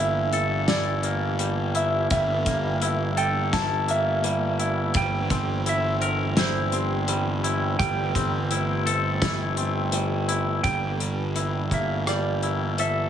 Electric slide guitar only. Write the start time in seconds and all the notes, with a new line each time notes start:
0.00 E5
0.69 D5
1.77 E5
2.12 E5
3.18 G5
3.53 A5
3.91 E5
4.97 G5
5.69 E5
6.39 C5
7.79 G5
10.63 G5
11.74 E5
12.09 D5
12.80 E5